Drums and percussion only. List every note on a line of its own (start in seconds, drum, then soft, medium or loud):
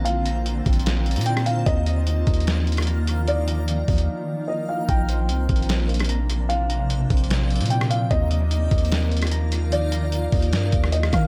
0.06 closed hi-hat medium
0.26 closed hi-hat medium
0.46 closed hi-hat medium
0.66 kick loud
0.66 closed hi-hat medium
0.73 closed hi-hat medium
0.79 closed hi-hat medium
0.86 snare loud
0.86 closed hi-hat medium
1.06 closed hi-hat soft
1.11 closed hi-hat medium
1.16 closed hi-hat medium
1.21 closed hi-hat medium
1.26 closed hi-hat medium
1.37 cross-stick loud
1.46 closed hi-hat medium
1.66 kick loud
1.66 closed hi-hat medium
1.86 closed hi-hat medium
2.07 closed hi-hat medium
2.27 kick loud
2.27 closed hi-hat medium
2.34 closed hi-hat medium
2.40 closed hi-hat medium
2.47 snare loud
2.47 closed hi-hat medium
2.67 closed hi-hat soft
2.72 closed hi-hat medium
2.77 cross-stick medium
2.77 closed hi-hat medium
2.82 closed hi-hat medium
2.87 closed hi-hat medium
3.07 closed hi-hat medium
3.28 closed hi-hat medium
3.48 closed hi-hat medium
3.68 closed hi-hat medium
3.88 kick loud
3.88 closed hi-hat soft
3.88 open hi-hat soft
3.98 closed hi-hat medium
4.89 kick loud
4.89 closed hi-hat medium
5.09 closed hi-hat medium
5.29 closed hi-hat medium
5.49 kick loud
5.49 closed hi-hat medium
5.56 closed hi-hat medium
5.62 closed hi-hat medium
5.69 snare loud
5.69 closed hi-hat medium
5.89 closed hi-hat soft
5.94 closed hi-hat medium
5.99 cross-stick medium
5.99 closed hi-hat medium
6.04 closed hi-hat medium
6.09 closed hi-hat medium
6.30 closed hi-hat medium
6.50 closed hi-hat medium
6.70 closed hi-hat medium
6.90 closed hi-hat medium
7.10 kick loud
7.10 closed hi-hat medium
7.17 closed hi-hat medium
7.24 closed hi-hat medium
7.30 snare loud
7.30 closed hi-hat medium
7.50 closed hi-hat soft
7.56 closed hi-hat medium
7.61 closed hi-hat medium
7.66 closed hi-hat medium
7.70 closed hi-hat medium
7.81 cross-stick loud
7.91 closed hi-hat medium
8.11 kick loud
8.11 closed hi-hat medium
8.31 closed hi-hat medium
8.51 closed hi-hat medium
8.71 kick loud
8.71 closed hi-hat medium
8.78 closed hi-hat medium
8.85 closed hi-hat medium
8.92 snare loud
8.92 closed hi-hat medium
9.12 closed hi-hat soft
9.17 closed hi-hat medium
9.22 cross-stick medium
9.22 closed hi-hat medium
9.27 closed hi-hat medium
9.31 closed hi-hat medium
9.52 closed hi-hat medium
9.72 closed hi-hat medium
9.92 closed hi-hat medium
10.12 closed hi-hat medium
10.32 kick loud
10.32 closed hi-hat soft
10.32 open hi-hat soft
10.42 closed hi-hat medium
10.53 snare loud
10.53 closed hi-hat medium
10.72 kick loud
10.72 closed hi-hat medium
10.84 cross-stick medium
10.92 closed hi-hat medium
11.03 cross-stick loud
11.13 kick loud
11.13 cross-stick loud
11.13 closed hi-hat medium